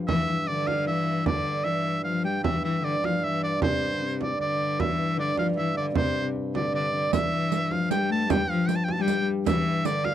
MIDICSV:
0, 0, Header, 1, 7, 480
1, 0, Start_track
1, 0, Tempo, 390371
1, 108, Time_signature, 3, 2, 24, 8
1, 12474, End_track
2, 0, Start_track
2, 0, Title_t, "Harp"
2, 0, Program_c, 0, 46
2, 0, Note_on_c, 0, 77, 73
2, 0, Note_on_c, 0, 79, 81
2, 0, Note_on_c, 0, 81, 83
2, 108, Note_on_c, 0, 76, 79
2, 176, Note_off_c, 0, 81, 0
2, 181, Note_off_c, 0, 77, 0
2, 587, Note_on_c, 0, 74, 80
2, 831, Note_on_c, 0, 77, 86
2, 905, Note_off_c, 0, 76, 0
2, 1041, Note_off_c, 0, 79, 0
2, 1092, Note_on_c, 0, 76, 80
2, 1166, Note_off_c, 0, 77, 0
2, 1554, Note_off_c, 0, 74, 0
2, 1559, Note_on_c, 0, 74, 67
2, 1788, Note_off_c, 0, 74, 0
2, 1793, Note_on_c, 0, 74, 71
2, 2032, Note_off_c, 0, 76, 0
2, 2036, Note_on_c, 0, 76, 81
2, 2271, Note_off_c, 0, 76, 0
2, 2517, Note_on_c, 0, 77, 68
2, 2761, Note_on_c, 0, 79, 69
2, 3019, Note_on_c, 0, 76, 69
2, 3092, Note_off_c, 0, 77, 0
2, 3244, Note_off_c, 0, 76, 0
2, 3249, Note_on_c, 0, 76, 66
2, 3483, Note_off_c, 0, 74, 0
2, 3488, Note_on_c, 0, 74, 74
2, 3743, Note_on_c, 0, 77, 72
2, 3817, Note_off_c, 0, 76, 0
2, 3966, Note_on_c, 0, 76, 72
2, 4039, Note_off_c, 0, 77, 0
2, 4203, Note_off_c, 0, 74, 0
2, 4208, Note_on_c, 0, 74, 68
2, 4456, Note_on_c, 0, 72, 69
2, 4671, Note_off_c, 0, 79, 0
2, 5183, Note_off_c, 0, 74, 0
2, 5188, Note_on_c, 0, 74, 74
2, 5427, Note_off_c, 0, 74, 0
2, 5432, Note_on_c, 0, 74, 67
2, 5893, Note_off_c, 0, 76, 0
2, 6145, Note_on_c, 0, 76, 69
2, 6372, Note_off_c, 0, 74, 0
2, 6377, Note_on_c, 0, 74, 79
2, 6615, Note_on_c, 0, 77, 80
2, 6689, Note_off_c, 0, 76, 0
2, 6850, Note_on_c, 0, 76, 81
2, 6890, Note_off_c, 0, 72, 0
2, 6924, Note_off_c, 0, 77, 0
2, 7091, Note_off_c, 0, 74, 0
2, 7096, Note_on_c, 0, 74, 64
2, 7320, Note_on_c, 0, 72, 79
2, 8058, Note_off_c, 0, 74, 0
2, 8063, Note_on_c, 0, 74, 81
2, 8291, Note_off_c, 0, 74, 0
2, 8295, Note_on_c, 0, 74, 68
2, 8520, Note_off_c, 0, 74, 0
2, 8525, Note_on_c, 0, 74, 74
2, 8768, Note_off_c, 0, 76, 0
2, 9241, Note_on_c, 0, 76, 83
2, 9734, Note_on_c, 0, 79, 75
2, 9754, Note_off_c, 0, 72, 0
2, 9955, Note_on_c, 0, 81, 82
2, 10190, Note_off_c, 0, 79, 0
2, 10195, Note_on_c, 0, 79, 86
2, 10424, Note_on_c, 0, 77, 70
2, 10498, Note_off_c, 0, 76, 0
2, 10796, Note_off_c, 0, 74, 0
2, 11052, Note_off_c, 0, 79, 0
2, 11057, Note_on_c, 0, 79, 84
2, 11644, Note_on_c, 0, 76, 83
2, 11718, Note_off_c, 0, 77, 0
2, 11737, Note_off_c, 0, 81, 0
2, 11887, Note_off_c, 0, 76, 0
2, 11892, Note_on_c, 0, 76, 74
2, 12104, Note_on_c, 0, 74, 77
2, 12354, Note_on_c, 0, 77, 77
2, 12428, Note_off_c, 0, 76, 0
2, 12474, Note_off_c, 0, 74, 0
2, 12474, Note_off_c, 0, 77, 0
2, 12474, Note_off_c, 0, 79, 0
2, 12474, End_track
3, 0, Start_track
3, 0, Title_t, "Shawm"
3, 0, Program_c, 1, 111
3, 94, Note_on_c, 1, 76, 94
3, 585, Note_on_c, 1, 74, 88
3, 604, Note_off_c, 1, 76, 0
3, 827, Note_on_c, 1, 77, 80
3, 845, Note_off_c, 1, 74, 0
3, 1062, Note_off_c, 1, 77, 0
3, 1069, Note_on_c, 1, 76, 84
3, 1522, Note_off_c, 1, 76, 0
3, 1555, Note_on_c, 1, 74, 85
3, 2019, Note_on_c, 1, 76, 85
3, 2037, Note_off_c, 1, 74, 0
3, 2499, Note_off_c, 1, 76, 0
3, 2506, Note_on_c, 1, 77, 76
3, 2739, Note_off_c, 1, 77, 0
3, 2762, Note_on_c, 1, 79, 67
3, 2988, Note_off_c, 1, 79, 0
3, 2999, Note_on_c, 1, 76, 80
3, 3227, Note_off_c, 1, 76, 0
3, 3253, Note_on_c, 1, 76, 73
3, 3498, Note_on_c, 1, 74, 82
3, 3517, Note_off_c, 1, 76, 0
3, 3753, Note_on_c, 1, 77, 74
3, 3772, Note_off_c, 1, 74, 0
3, 3982, Note_on_c, 1, 76, 86
3, 4000, Note_off_c, 1, 77, 0
3, 4217, Note_off_c, 1, 76, 0
3, 4225, Note_on_c, 1, 74, 82
3, 4442, Note_off_c, 1, 74, 0
3, 4454, Note_on_c, 1, 72, 85
3, 5125, Note_off_c, 1, 72, 0
3, 5192, Note_on_c, 1, 74, 65
3, 5407, Note_off_c, 1, 74, 0
3, 5420, Note_on_c, 1, 74, 87
3, 5903, Note_on_c, 1, 76, 94
3, 5922, Note_off_c, 1, 74, 0
3, 6379, Note_off_c, 1, 76, 0
3, 6388, Note_on_c, 1, 74, 93
3, 6605, Note_off_c, 1, 74, 0
3, 6625, Note_on_c, 1, 77, 71
3, 6731, Note_off_c, 1, 77, 0
3, 6860, Note_on_c, 1, 76, 86
3, 7081, Note_off_c, 1, 76, 0
3, 7097, Note_on_c, 1, 74, 73
3, 7204, Note_off_c, 1, 74, 0
3, 7336, Note_on_c, 1, 72, 91
3, 7707, Note_off_c, 1, 72, 0
3, 8061, Note_on_c, 1, 74, 70
3, 8280, Note_off_c, 1, 74, 0
3, 8295, Note_on_c, 1, 74, 90
3, 8739, Note_off_c, 1, 74, 0
3, 8764, Note_on_c, 1, 76, 100
3, 9494, Note_on_c, 1, 77, 86
3, 9513, Note_off_c, 1, 76, 0
3, 9711, Note_off_c, 1, 77, 0
3, 9718, Note_on_c, 1, 79, 97
3, 9945, Note_off_c, 1, 79, 0
3, 9979, Note_on_c, 1, 81, 95
3, 10212, Note_on_c, 1, 79, 102
3, 10231, Note_off_c, 1, 81, 0
3, 10453, Note_on_c, 1, 77, 91
3, 10472, Note_off_c, 1, 79, 0
3, 10673, Note_on_c, 1, 79, 80
3, 10691, Note_off_c, 1, 77, 0
3, 10771, Note_on_c, 1, 81, 79
3, 10789, Note_off_c, 1, 79, 0
3, 10874, Note_on_c, 1, 79, 83
3, 10892, Note_off_c, 1, 81, 0
3, 10977, Note_on_c, 1, 81, 80
3, 10995, Note_off_c, 1, 79, 0
3, 11086, Note_on_c, 1, 79, 99
3, 11105, Note_off_c, 1, 81, 0
3, 11410, Note_off_c, 1, 79, 0
3, 11647, Note_on_c, 1, 76, 92
3, 12122, Note_on_c, 1, 74, 97
3, 12140, Note_off_c, 1, 76, 0
3, 12359, Note_on_c, 1, 77, 90
3, 12378, Note_off_c, 1, 74, 0
3, 12474, Note_off_c, 1, 77, 0
3, 12474, End_track
4, 0, Start_track
4, 0, Title_t, "Viola da gamba"
4, 0, Program_c, 2, 42
4, 103, Note_on_c, 2, 52, 85
4, 323, Note_off_c, 2, 52, 0
4, 331, Note_on_c, 2, 52, 75
4, 444, Note_off_c, 2, 52, 0
4, 574, Note_on_c, 2, 50, 76
4, 1062, Note_on_c, 2, 52, 82
4, 1080, Note_off_c, 2, 50, 0
4, 1544, Note_on_c, 2, 50, 81
4, 1562, Note_off_c, 2, 52, 0
4, 2020, Note_on_c, 2, 52, 76
4, 2039, Note_off_c, 2, 50, 0
4, 2506, Note_off_c, 2, 52, 0
4, 2514, Note_on_c, 2, 53, 69
4, 2753, Note_on_c, 2, 55, 61
4, 2772, Note_off_c, 2, 53, 0
4, 2990, Note_off_c, 2, 55, 0
4, 2997, Note_on_c, 2, 52, 79
4, 3226, Note_off_c, 2, 52, 0
4, 3240, Note_on_c, 2, 52, 77
4, 3467, Note_off_c, 2, 52, 0
4, 3478, Note_on_c, 2, 50, 75
4, 3707, Note_off_c, 2, 50, 0
4, 3716, Note_on_c, 2, 53, 61
4, 3946, Note_off_c, 2, 53, 0
4, 3974, Note_on_c, 2, 52, 63
4, 4420, Note_off_c, 2, 52, 0
4, 4456, Note_on_c, 2, 48, 66
4, 4824, Note_off_c, 2, 48, 0
4, 4855, Note_on_c, 2, 50, 49
4, 4935, Note_on_c, 2, 48, 74
4, 4953, Note_off_c, 2, 50, 0
4, 5405, Note_off_c, 2, 48, 0
4, 5412, Note_on_c, 2, 50, 70
4, 5889, Note_on_c, 2, 52, 82
4, 5907, Note_off_c, 2, 50, 0
4, 6363, Note_on_c, 2, 50, 76
4, 6382, Note_off_c, 2, 52, 0
4, 6605, Note_off_c, 2, 50, 0
4, 6612, Note_on_c, 2, 53, 68
4, 6836, Note_off_c, 2, 53, 0
4, 6854, Note_on_c, 2, 52, 68
4, 7077, Note_off_c, 2, 52, 0
4, 7095, Note_on_c, 2, 50, 71
4, 7318, Note_off_c, 2, 50, 0
4, 7326, Note_on_c, 2, 48, 80
4, 7702, Note_off_c, 2, 48, 0
4, 8047, Note_on_c, 2, 50, 65
4, 8268, Note_off_c, 2, 50, 0
4, 8275, Note_on_c, 2, 50, 69
4, 8506, Note_off_c, 2, 50, 0
4, 8531, Note_on_c, 2, 50, 68
4, 8754, Note_off_c, 2, 50, 0
4, 8770, Note_on_c, 2, 52, 87
4, 9480, Note_on_c, 2, 53, 74
4, 9498, Note_off_c, 2, 52, 0
4, 9719, Note_on_c, 2, 55, 77
4, 9738, Note_off_c, 2, 53, 0
4, 9956, Note_on_c, 2, 57, 77
4, 9975, Note_off_c, 2, 55, 0
4, 10185, Note_off_c, 2, 57, 0
4, 10193, Note_on_c, 2, 55, 81
4, 10420, Note_off_c, 2, 55, 0
4, 10440, Note_on_c, 2, 53, 93
4, 10664, Note_off_c, 2, 53, 0
4, 11053, Note_on_c, 2, 55, 89
4, 11370, Note_off_c, 2, 55, 0
4, 11637, Note_on_c, 2, 52, 93
4, 12106, Note_on_c, 2, 50, 78
4, 12125, Note_off_c, 2, 52, 0
4, 12474, Note_off_c, 2, 50, 0
4, 12474, End_track
5, 0, Start_track
5, 0, Title_t, "Harmonium"
5, 0, Program_c, 3, 20
5, 0, Note_on_c, 3, 43, 70
5, 2982, Note_off_c, 3, 43, 0
5, 3000, Note_on_c, 3, 43, 74
5, 8743, Note_off_c, 3, 43, 0
5, 8762, Note_on_c, 3, 43, 70
5, 12474, Note_off_c, 3, 43, 0
5, 12474, End_track
6, 0, Start_track
6, 0, Title_t, "Frame drum"
6, 105, Note_on_c, 9, 64, 75
6, 228, Note_off_c, 9, 64, 0
6, 827, Note_on_c, 9, 64, 59
6, 949, Note_off_c, 9, 64, 0
6, 1078, Note_on_c, 9, 64, 22
6, 1201, Note_off_c, 9, 64, 0
6, 1550, Note_on_c, 9, 64, 76
6, 1673, Note_off_c, 9, 64, 0
6, 1802, Note_on_c, 9, 64, 25
6, 1925, Note_off_c, 9, 64, 0
6, 3004, Note_on_c, 9, 64, 74
6, 3127, Note_off_c, 9, 64, 0
6, 3739, Note_on_c, 9, 64, 63
6, 3862, Note_off_c, 9, 64, 0
6, 3971, Note_on_c, 9, 64, 25
6, 4094, Note_off_c, 9, 64, 0
6, 4214, Note_on_c, 9, 64, 23
6, 4337, Note_off_c, 9, 64, 0
6, 4450, Note_on_c, 9, 64, 88
6, 4573, Note_off_c, 9, 64, 0
6, 5173, Note_on_c, 9, 64, 62
6, 5296, Note_off_c, 9, 64, 0
6, 5417, Note_on_c, 9, 64, 27
6, 5540, Note_off_c, 9, 64, 0
6, 5658, Note_on_c, 9, 64, 21
6, 5781, Note_off_c, 9, 64, 0
6, 5898, Note_on_c, 9, 64, 75
6, 6021, Note_off_c, 9, 64, 0
6, 6608, Note_on_c, 9, 64, 67
6, 6731, Note_off_c, 9, 64, 0
6, 6848, Note_on_c, 9, 64, 25
6, 6971, Note_off_c, 9, 64, 0
6, 7088, Note_on_c, 9, 64, 27
6, 7210, Note_off_c, 9, 64, 0
6, 7322, Note_on_c, 9, 64, 92
6, 7445, Note_off_c, 9, 64, 0
6, 7813, Note_on_c, 9, 64, 24
6, 7936, Note_off_c, 9, 64, 0
6, 8053, Note_on_c, 9, 64, 68
6, 8176, Note_off_c, 9, 64, 0
6, 8767, Note_on_c, 9, 64, 78
6, 8890, Note_off_c, 9, 64, 0
6, 9482, Note_on_c, 9, 64, 59
6, 9605, Note_off_c, 9, 64, 0
6, 9734, Note_on_c, 9, 64, 26
6, 9857, Note_off_c, 9, 64, 0
6, 9971, Note_on_c, 9, 64, 23
6, 10094, Note_off_c, 9, 64, 0
6, 10208, Note_on_c, 9, 64, 92
6, 10331, Note_off_c, 9, 64, 0
6, 10924, Note_on_c, 9, 64, 65
6, 11047, Note_off_c, 9, 64, 0
6, 11171, Note_on_c, 9, 64, 26
6, 11294, Note_off_c, 9, 64, 0
6, 11409, Note_on_c, 9, 64, 24
6, 11532, Note_off_c, 9, 64, 0
6, 11644, Note_on_c, 9, 64, 88
6, 11767, Note_off_c, 9, 64, 0
6, 12352, Note_on_c, 9, 64, 66
6, 12474, Note_off_c, 9, 64, 0
6, 12474, End_track
7, 0, Start_track
7, 0, Title_t, "Riq"
7, 8769, Note_on_c, 9, 54, 76
7, 8892, Note_off_c, 9, 54, 0
7, 9245, Note_on_c, 9, 54, 57
7, 9368, Note_off_c, 9, 54, 0
7, 9725, Note_on_c, 9, 54, 62
7, 9848, Note_off_c, 9, 54, 0
7, 10206, Note_on_c, 9, 54, 64
7, 10329, Note_off_c, 9, 54, 0
7, 10682, Note_on_c, 9, 54, 53
7, 10804, Note_off_c, 9, 54, 0
7, 11162, Note_on_c, 9, 54, 60
7, 11285, Note_off_c, 9, 54, 0
7, 11636, Note_on_c, 9, 54, 61
7, 11759, Note_off_c, 9, 54, 0
7, 12115, Note_on_c, 9, 54, 59
7, 12238, Note_off_c, 9, 54, 0
7, 12474, End_track
0, 0, End_of_file